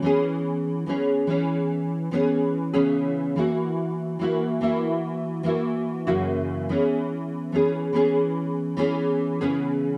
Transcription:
X:1
M:4/4
L:1/16
Q:1/4=72
K:C#dor
V:1 name="Nylon-string guitar"
[E,B,CG]4 [E,B,CG]2 [E,B,CG]4 [E,B,CG]3 [C,E,B,CG]3 | [E,A,EF]4 [E,A,EF]2 [E,A,EF]4 [E,A,EF]3 [F,,C,E,A,EF]3 | [E,B,CG]4 [E,B,CG]2 [E,B,CG]4 [E,B,CG]3 [C,E,B,CG]3 |]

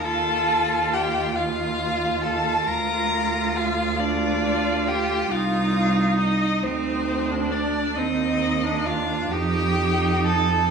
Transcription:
X:1
M:12/8
L:1/16
Q:3/8=45
K:Bb
V:1 name="Violin"
a4 g2 f4 a2 b4 f2 d4 g2 | f4 e2 c4 d2 e4 f2 g4 a2 |]
V:2 name="Violin"
A4 G2 F4 A2 B4 F2 D4 G2 | F4 E2 C4 D2 E4 F2 G4 A2 |]
V:3 name="Viola"
F6 F6 F6 F6 | E6 E3 D3 C3 D3 E6 |]
V:4 name="Cello" clef=bass
E,,12 D,,12 | C,,6 D,,6 E,,6 F,,6 |]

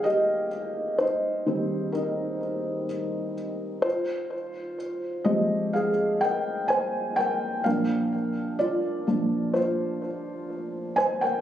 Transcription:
X:1
M:4/4
L:1/16
Q:1/4=63
K:Eb
V:1 name="Felt piano"
[Ge]4 [Ec]4 [EB]6 z2 | [Fc]4 z2 [Ge]2 [Af]2 [Bg]2 [ca]2 [Bg]2 | [Bf]4 [Fd]4 [Fc]6 [ca] [Bg] |]
V:2 name="Felt piano" clef=bass
[E,B,C]2 z4 [E,G,C]6 z4 | z6 [F,A,C]2 z8 | [B,,F,D]6 [B,,F,D]2 z8 |]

